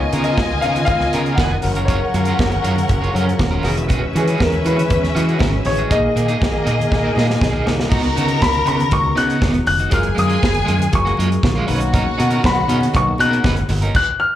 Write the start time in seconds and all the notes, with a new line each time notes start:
Already playing: C#3 D#3 B3 D#4 F4 A#4 C#5 D#5 F5 G#5
0.01 muted clean electric guitar stroke
0.13 C#3 B3 F4 A#4, closed hi-hat, muted conga, high conga
0.24 B3 F4 A#4 D#5, closed hi-hat
0.37 C#2, kick, snare, muted conga
0.51 muted clean electric guitar stroke, high conga
0.61 C#3 B3 F4 F5, closed hi-hat, low conga
0.66 A#4
0.76 muted clean electric guitar stroke, closed hi-hat, high conga
0.85 C#2 F5, muted clean electric guitar stroke, kick, closed hi-hat, muted conga, high conga
1.00 muted clean electric guitar stroke, snare
1.12 C#3 B3 D#4 F4 A#4, closed hi-hat, muted conga
1.25 B3 F4 A#4, closed hi-hat
1.35 F1 B3 F4 F#5, kick, snare
1.39 B4, muted conga, high conga
1.52 muted clean electric guitar stroke
1.62 F#1 C#3 F3 F#3 C#4 A#4 F#5, muted clean electric guitar stroke, open hi-hat, muted conga, high conga, low conga
1.75 C#4 F4 A#4, closed hi-hat
1.85 C#4 F4 A#4 C#5, kick, closed hi-hat, muted conga, low conga
2.01 muted clean electric guitar stroke
2.14 F#2 C#4 F4 A#4, closed hi-hat, muted conga, high conga
2.25 C#4 F4 A#4, closed hi-hat
2.39 F#1, kick, snare, muted conga
2.51 muted clean electric guitar stroke, closed hi-hat, high conga
2.63 F#2 C#4 F4 A#4, closed hi-hat, muted conga, low conga
2.76 muted clean electric guitar stroke, closed hi-hat, high conga
2.88 F#1, muted clean electric guitar stroke, kick, closed hi-hat, muted conga, high conga
3.01 C#4 F4 C#5, closed hi-hat
3.13 F#2 F3 F#3 C#4 F4 A4 A#4, closed hi-hat
3.21 A#4
3.26 muted clean electric guitar stroke, closed hi-hat
3.37 D#1, muted clean electric guitar stroke, kick, snare, muted conga, high conga
3.51 C#4 F4 A#4
3.63 E1 C#3 E3 G#3 C#4 F#4 G#4 A#4 B4 E5, open hi-hat, muted conga, high conga, low conga
3.76 muted clean electric guitar stroke, closed hi-hat
3.88 C#4 F#4 G#4, kick, closed hi-hat, muted conga, low conga
4.02 muted clean electric guitar stroke
4.13 E3 C#4 F#4 G#4, closed hi-hat, muted conga, high conga
4.28 C#4 F#4 G#4, closed hi-hat
4.38 E2 A#4, kick, snare, muted conga
4.52 muted clean electric guitar stroke, closed hi-hat, high conga
4.65 E3 C#4 F#4 G#4 B4, closed hi-hat, muted conga, low conga
4.77 muted clean electric guitar stroke, closed hi-hat, high conga
4.88 E2, muted clean electric guitar stroke, kick, closed hi-hat, muted conga, high conga
5.03 muted clean electric guitar stroke, snare, closed hi-hat
5.14 E3 C#4 F#4 G#4, closed hi-hat, muted conga
5.27 C#4 F#4 G#4, closed hi-hat
5.39 G#1 C#4 F#4 A#4, kick, snare, muted conga, high conga
5.53 muted clean electric guitar stroke
5.64 A1 E3 C#4 F#4 G#4 C#5, muted clean electric guitar stroke, open hi-hat, high conga, low conga
5.77 C#4 F#4 G#4, closed hi-hat
5.89 A#1 A#2 A#3 D#4 G#4 D#5, kick, closed hi-hat, muted conga, low conga
5.93 D#3
6.03 muted clean electric guitar stroke
6.16 A#2 A#3 D#4 G#4, closed hi-hat, muted conga, high conga
6.28 A#3 D#4 G#4, closed hi-hat
6.42 A#1, kick, snare
6.54 muted clean electric guitar stroke, high conga
6.65 A#2 A#3 D#4 G#4, closed hi-hat, muted conga, low conga
6.79 muted clean electric guitar stroke, closed hi-hat, high conga
6.91 A#2, muted clean electric guitar stroke, kick, snare, muted conga, high conga
7.04 A#3 D#4 A#4
7.15 A#2 A#3 D#4 G#4, snare, muted conga
7.28 muted clean electric guitar stroke, snare
7.40 B1, muted clean electric guitar stroke, kick, snare, muted conga, high conga
7.51 A#3 D#4 G#4
7.66 C2 A#2 A#3 D#4 G#4 A#4, snare, muted conga, high conga, low conga
7.77 muted clean electric guitar stroke, snare
7.89 C#2 C#3 B3 D#4 F#4 A#4 A#5, kick, crash, muted conga, low conga
8.03 muted clean electric guitar stroke, closed hi-hat
8.15 C#3 B3 D#4 F#4, closed hi-hat, muted conga, high conga
8.28 B3 D#4 F#4, closed hi-hat
8.42 C#2 B5, kick, snare, muted conga
8.52 muted clean electric guitar stroke, closed hi-hat, high conga
8.66 C#3 B3 D#4 F#4 B5, closed hi-hat, muted conga, low conga
8.77 muted clean electric guitar stroke, closed hi-hat, high conga
8.90 C#2 C#3 B3 D#4 F#4 C#6, muted clean electric guitar stroke, kick, closed hi-hat, muted conga, high conga
9.04 muted clean electric guitar stroke
9.16 C#3 B3 D#4 F#4 F#6, closed hi-hat, muted conga
9.29 B3 D#4 F#4, closed hi-hat
9.41 E1 B3 D#4 G#4, kick, snare, muted conga, high conga
9.53 muted clean electric guitar stroke, closed hi-hat
9.66 F1 F#6, muted clean electric guitar stroke, open hi-hat, muted conga, high conga, low conga
9.79 B3 D#4 F#4, closed hi-hat
9.90 F#1 F#3 G#3 A#3 F4 G#4 A#4 G#5 F6, kick, closed hi-hat, muted conga, low conga
10.03 muted clean electric guitar stroke, closed hi-hat
10.15 F#2 G#3 A#3 F4, closed hi-hat, muted conga, high conga
10.19 D#6
10.28 G#3 A#3 F4, closed hi-hat
10.43 F#1, kick, snare
10.51 muted clean electric guitar stroke, closed hi-hat, high conga
10.65 F#2 G#3 A#3 F4, closed hi-hat, muted conga, low conga
10.79 muted clean electric guitar stroke, closed hi-hat, high conga
10.92 F#1 F#3 F4 G#4 A#4 C#6, muted clean electric guitar stroke, kick, closed hi-hat, high conga
11.05 G#3 A#3 F#4, closed hi-hat
11.17 F#2 G#3 A#3 F4, closed hi-hat, muted conga
11.31 muted clean electric guitar stroke, closed hi-hat
11.43 A#1, muted clean electric guitar stroke, kick, snare, muted conga, high conga
11.55 G#3 A#3 F4
11.66 B1 B2 A#3 C#4 D#4 F#4 B4 F#5, open hi-hat, high conga, low conga
11.75 C#5
11.80 muted clean electric guitar stroke, closed hi-hat
11.92 C#3 A#3 C#4 D#4 A#4, kick, closed hi-hat, muted conga, low conga
12.06 muted clean electric guitar stroke
12.18 B2 C#4 D#4 A#4, closed hi-hat, high conga
12.29 C#4 D#4 A#4, closed hi-hat
12.44 B1 B5, kick, snare, muted conga
12.56 muted clean electric guitar stroke, high conga
12.68 B2 C#4 D#4 A#4, closed hi-hat, muted conga, low conga
12.81 closed hi-hat, high conga
12.93 B1 B2 A#3 D#4 C#5 C#6, muted clean electric guitar stroke, kick, closed hi-hat, muted conga, high conga
13.07 muted clean electric guitar stroke
13.18 B2 C#4 D#4 A#4 F#6, closed hi-hat, muted conga
13.31 C#4 D#4 A#4, closed hi-hat
13.44 F#1 C#4 D#4 B4, kick, snare, high conga
13.57 muted clean electric guitar stroke, closed hi-hat
13.69 G1, muted clean electric guitar stroke, open hi-hat, muted conga, high conga, low conga
13.82 C#4 D#4 A#4, closed hi-hat
13.95 F#6, kick, crash
14.20 F6